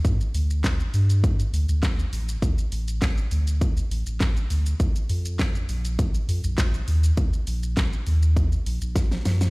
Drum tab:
HH |x-o-x-o-x-o-x-o-|x-o-x-o-x-o-x-o-|x-o-x-o-x-o-x-o-|x-o-x-o-x-o-x-o-|
SH |xxxxxxxxxxxxxxxx|xxxxxxxxxxxxxxxx|xxxxxxxxxxxxxxxx|xxxxxxxxxxxxxxxx|
CP |----x-------x---|----x-------x---|----x-------x---|----x-----------|
SD |----o-------o---|----o-------o---|----o-------o---|----o-------oooo|
BD |o---o---o---o---|o---o---o---o---|o---o---o---o---|o---o---o---o---|